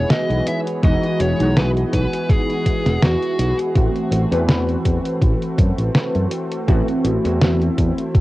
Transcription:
Already playing: synth keys E3 G#3 D#4 B4, analog synth pad E3 B3 F#4 G#4, lead electric guitar C#5
0.10 lead electric guitar D#5, snare, closed hi-hat
0.30 fingered electric bass B1, closed hi-hat
0.47 lead electric guitar E5, closed hi-hat
0.67 closed hi-hat
0.82 fingered electric bass E1, synth keys E3 G#3 D#4 F#4, lead electric guitar D#5, kick, closed hi-hat
1.03 closed hi-hat
1.20 fingered electric bass E1, lead electric guitar C#5, closed hi-hat
1.39 fingered electric bass B1, synth keys E3 G#3 D#4 F#4, closed hi-hat
1.57 lead electric guitar B4, snare, closed hi-hat
1.77 closed hi-hat
1.93 fingered electric bass B1, lead electric guitar B4, kick, closed hi-hat
2.13 closed hi-hat
2.29 lead electric guitar G#4, kick, closed hi-hat
2.50 closed hi-hat
2.66 kick, closed hi-hat
2.86 fingered electric bass E1, snare, closed hi-hat
3.03 fingered electric bass E2, lead electric guitar F#4, snare, closed hi-hat
3.23 closed hi-hat
3.39 fingered electric bass B1, closed hi-hat
3.59 closed hi-hat
3.75 fingered electric bass A1, synth keys E3 A3 C4 F#4, analog synth pad A3 C4, kick, closed hi-hat
3.96 closed hi-hat
4.11 fingered electric bass A1, closed hi-hat
4.31 fingered electric bass E2, synth keys E3 A3 C4 B4, closed hi-hat
4.49 snare, closed hi-hat
4.69 closed hi-hat
4.85 fingered electric bass E2, kick, closed hi-hat
5.05 closed hi-hat
5.21 fingered electric bass A1, kick, closed hi-hat
5.42 closed hi-hat
5.58 fingered electric bass F#2, kick, closed hi-hat
5.78 fingered electric bass A1, closed hi-hat
5.95 snare, closed hi-hat
6.15 fingered electric bass F#2, closed hi-hat
6.31 closed hi-hat
6.52 closed hi-hat
6.67 fingered electric bass A1, synth keys E3 A3 C4 F#4, analog synth pad E4, kick, closed hi-hat
6.88 closed hi-hat
7.04 fingered electric bass A1, closed hi-hat
7.23 fingered electric bass E2, synth keys E3 A3 C4 F#4, closed hi-hat
7.42 snare, closed hi-hat
7.62 closed hi-hat
7.78 fingered electric bass E2, kick, closed hi-hat
7.98 closed hi-hat
8.15 kick, closed hi-hat

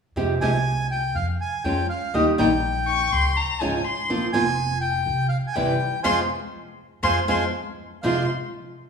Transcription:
0.16 upright bass F2, nylon-string guitar C3 F3 G#3 C4 G4
0.41 upright bass C2, nylon-string guitar C3 F3 G#3 C4 G4, bandoneon G#5
0.91 bandoneon G5
1.15 upright bass F2, bandoneon F5
1.41 bandoneon G#5
1.64 upright bass F2, nylon-string guitar F3 G#3 C#4 F4, bandoneon G5
1.89 bandoneon F5
2.14 upright bass D#2, nylon-string guitar D#3 G3 A#3 D#4 G4, bandoneon D#5
2.38 upright bass A#1, nylon-string guitar D#3 G3 A#3 D#4 G4, bandoneon G5
2.88 violin C#6
3.12 upright bass C#2, violin C6
3.37 violin A#5
3.61 upright bass G#1, nylon-string guitar C#3 F3 G#3 C#4 F4, violin G#5
3.85 violin C6
4.10 upright bass A#1, nylon-string guitar F3 A#3 C4 F4
4.33 upright bass F1, nylon-string guitar F3 A#3 C4 F4, bandoneon G#5
4.81 bandoneon G5
5.06 upright bass C2
5.29 bandoneon F5
5.47 bandoneon G#5
5.53 upright bass G1, nylon-string guitar C3 E3 G3 C4 E4, bandoneon G5
6.03 upright bass F2, nylon-string guitar F3 G#3 C4, bandoneon C5 F5 G#5, violin C6
7.03 upright bass F2, nylon-string guitar F3 G#3 C4, bandoneon C5 F5 G#5, violin C6
7.28 upright bass F2, nylon-string guitar F3 G#3 C4, bandoneon C5 F5 G#5, violin C6
8.03 upright bass F2, nylon-string guitar F2 C3 F3 G#3 C4 F4, bandoneon F5, violin C6

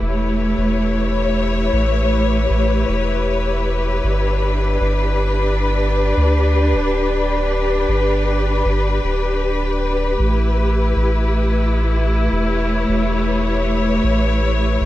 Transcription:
Already playing: string section A3 E4 G4 B4
0.02 sub bass E1
0.09 string section C#5
0.58 sub bass E1
1.73 sub bass A1
2.50 sub bass A1
2.89 sub bass E1
4.04 sub bass G1, string section D4
4.81 sub bass G1
6.17 sub bass D2
6.73 sub bass D1
7.89 sub bass G1
8.65 sub bass G1
9.04 sub bass D1
10.19 sub bass A1, string section A3
10.29 string section E4
10.96 sub bass A1
12.32 sub bass E1
12.47 string section C#5
12.89 sub bass E1
14.04 sub bass A1
14.81 sub bass A1

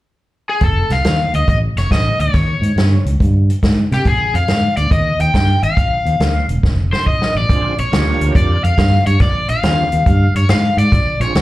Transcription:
0.49 overdriven electric guitar G#4
0.61 fingered electric bass F1, overdriven electric guitar A4, kick, closed hi-hat
0.90 fingered electric bass C2, overdriven electric guitar F5, snare, closed hi-hat
1.05 fingered electric bass D#2, snare, closed hi-hat
1.34 fingered electric bass D2, overdriven electric guitar D#5, closed hi-hat
1.48 fingered electric bass A1, overdriven electric guitar D#5, kick, closed hi-hat
1.76 fingered electric bass F1, overdriven electric guitar C#5, snare, closed hi-hat
1.91 fingered electric bass A1, overdriven electric guitar D#5, kick, snare, closed hi-hat
2.19 fingered electric bass D2, overdriven electric guitar C#5, closed hi-hat
2.34 fingered electric bass D#2, kick, snare, closed hi-hat
2.61 fingered electric bass G#2, closed hi-hat
2.76 fingered electric bass G2, snare, closed hi-hat
3.05 fingered electric bass C#2, closed hi-hat
3.20 fingered electric bass G2, kick, closed hi-hat
3.50 closed hi-hat
3.63 fingered electric bass G#2, kick, snare, closed hi-hat
3.91 fingered electric bass C3, overdriven electric guitar G4, snare, closed hi-hat
4.05 fingered electric bass A#1, overdriven electric guitar G#4, kick, snare, closed hi-hat
4.34 fingered electric bass F2, overdriven electric guitar F5, closed hi-hat
4.48 fingered electric bass G#2, snare, closed hi-hat
4.77 fingered electric bass D2, overdriven electric guitar D5, closed hi-hat
4.91 fingered electric bass D#2, overdriven electric guitar D#5, kick, closed hi-hat
5.20 fingered electric bass D#2, overdriven electric guitar G5, closed hi-hat
5.34 fingered electric bass G2, overdriven electric guitar G5, kick, snare, closed hi-hat
5.63 fingered electric bass G#1, overdriven electric guitar F5, closed hi-hat
5.77 fingered electric bass A#1, kick, closed hi-hat
6.05 fingered electric bass D#2, closed hi-hat
6.20 fingered electric bass D2, snare, closed hi-hat
6.48 fingered electric bass E1, closed hi-hat
6.63 fingered electric bass F1, kick, snare
6.93 overdriven electric guitar C5, snare
7.07 fingered electric bass A#1, overdriven electric guitar D#5, kick
7.22 snare
7.35 fingered electric bass A1, overdriven electric guitar D5
7.49 fingered electric bass A#1, tonewheel organ C4 D4 F4 G#4, kick, closed hi-hat
7.78 fingered electric bass A#1, overdriven electric guitar C#5, closed hi-hat
7.92 fingered electric bass D2, tonewheel organ A#3 D4 F4 G4, snare, closed hi-hat
8.21 fingered electric bass D2, closed hi-hat
8.35 fingered electric bass F2, overdriven electric guitar D5, kick, closed hi-hat
8.64 fingered electric bass F2, overdriven electric guitar F5, closed hi-hat
8.78 fingered electric bass G2, kick, snare, closed hi-hat
9.06 fingered electric bass G2, overdriven electric guitar C#5, closed hi-hat
9.20 fingered electric bass A#1, overdriven electric guitar D5, kick, snare, closed hi-hat
9.49 fingered electric bass A#1, overdriven electric guitar F5, closed hi-hat
9.63 fingered electric bass D#2, tonewheel organ C4 D4 F4 G#4, snare, closed hi-hat
9.92 fingered electric bass D#2, closed hi-hat
10.06 fingered electric bass G2, kick, closed hi-hat
10.35 fingered electric bass G2, overdriven electric guitar C#5, closed hi-hat
10.49 fingered electric bass G#2, overdriven electric guitar F5, snare, closed hi-hat
10.77 fingered electric bass G#2, overdriven electric guitar D5, closed hi-hat
10.92 fingered electric bass A#1, kick, snare, closed hi-hat
11.20 fingered electric bass A#1, tonewheel organ C4 D4 F4 G#4, overdriven electric guitar C#5, closed hi-hat
11.35 fingered electric bass D2, snare, closed hi-hat

